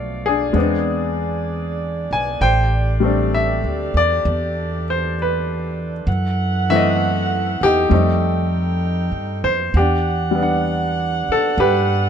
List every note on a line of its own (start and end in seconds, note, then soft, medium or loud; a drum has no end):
0.00 0.50 B1 medium
0.00 0.51 B2 medium
0.00 0.53 F3 soft
0.00 0.53 A3 soft
0.00 0.54 A3 soft
0.00 0.53 B3 soft
0.00 0.26 D4 medium
0.00 6.03 D5 medium
0.00 0.28 F5 medium
0.26 0.57 D4 medium
0.26 2.07 G#4 medium
0.53 2.06 E2 medium
0.53 2.39 G#3 soft
0.53 2.40 B3 soft
0.53 2.41 C4 soft
0.53 6.04 D4 medium
0.53 2.25 G#4 soft
0.59 2.42 D4 medium
2.11 2.38 B1 medium
2.11 2.39 G#5 medium
2.41 3.60 A1 medium
2.41 6.04 G4 soft
2.41 6.05 A4 soft
2.41 4.22 C5 medium
2.41 3.36 G5 medium
3.00 6.06 G3 soft
3.00 6.07 A3 soft
3.04 6.08 C4 soft
3.04 6.08 D4 soft
3.34 3.98 E5 medium
3.64 3.92 D2 soft
3.94 4.22 E2 medium
3.94 4.84 D5 medium
4.25 6.04 E2 medium
4.90 5.16 C5 medium
5.22 5.92 B4 medium
6.07 7.58 F#2 medium
6.07 7.89 E3 medium
6.07 9.58 A4 soft
6.07 7.89 F#5 medium
6.70 7.91 E3 soft
6.70 7.90 A3 soft
6.70 7.91 C4 soft
6.70 7.59 E5 medium
6.76 6.78 D#5 medium
7.61 7.88 E2 medium
7.61 9.42 G4 medium
7.65 7.93 D#4 medium
7.89 9.09 F2 medium
7.89 9.73 G3 soft
7.89 9.74 A3 soft
7.89 9.75 C4 soft
7.89 9.58 D#4 medium
7.89 9.58 G5 medium
7.94 9.75 D#4 medium
9.12 9.41 G2 soft
9.44 9.72 F2 medium
9.44 9.71 C5 medium
9.74 11.25 E2 medium
9.74 12.09 D4 medium
9.74 10.63 G4 medium
9.74 12.09 F#5 medium
9.79 10.37 D4 soft
10.31 12.09 G3 soft
10.31 12.09 B3 soft
10.38 12.09 D4 soft
10.43 12.09 F#5 soft
11.29 11.60 A4 medium
11.29 muted upright bass stroke soft
11.58 12.09 G2 medium
11.58 12.09 G4 medium
11.58 12.09 B4 medium